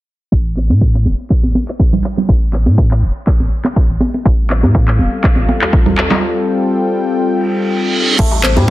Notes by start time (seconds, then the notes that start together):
0.32 A1, kick
0.57 clap, muted conga
0.70 A2, high conga
0.81 kick
0.94 clap, muted conga
1.05 E1, high conga
1.30 kick, clap
1.43 A1, muted conga, high conga
1.55 high conga
1.68 clap
1.79 kick, muted conga
1.92 A1, low conga
2.04 clap
2.17 muted conga, low conga
2.29 A1, kick
2.53 clap, muted conga
2.66 A2, high conga
2.78 kick
2.91 clap, muted conga
3.02 E1
3.27 kick, clap
3.40 A1, muted conga
3.65 clap, high conga
3.76 kick, muted conga
3.89 A1
4.00 high conga
4.14 muted conga
4.25 A1 G3 C4 F4 A4 F5, kick
4.50 clap, muted conga
4.63 A2, high conga, djembe bass
4.75 kick
4.88 clap, muted conga
4.99 E1, high conga
5.24 kick, clap
5.36 A1, muted conga, high conga
5.49 high conga
5.62 clap, djembe tone
5.73 kick, muted conga
5.86 A1, djembe bass, low conga
5.97 clap, djembe tone
6.10 muted conga, djembe slap, low conga
6.22 G5
7.21 reverse cymbal
8.19 A1 G3 A3 C4 E4 A4 C5, kick, crash
8.31 djembe tone
8.43 C5, clap, muted conga
8.56 A2 G3, high conga, djembe bass